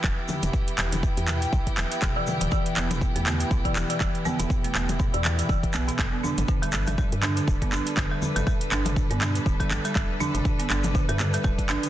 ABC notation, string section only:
X:1
M:4/4
L:1/8
Q:"Swing 16ths" 1/4=121
K:Em
V:1 name="String section"
[E,B,EG]8- | [E,B,EG]8- | [E,B,EG]8 | [G,DAB]8- |
[G,DAB]8- | [G,DAB]8 |]